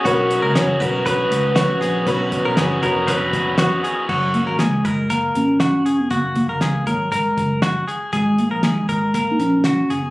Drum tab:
CC |--------|--------|x-------|--------|
HH |xxxxxxxx|xxxxxxxx|-xxxxxxx|xxxxxxxx|
SD |--o---o-|--o---o-|--o---o-|--o---o-|
BD |o--oo---|oo-ooo--|o--oo---|oo-ooo--|

CC |--------|
HH |xxxxxxxx|
SD |--o---o-|
BD |o--oo---|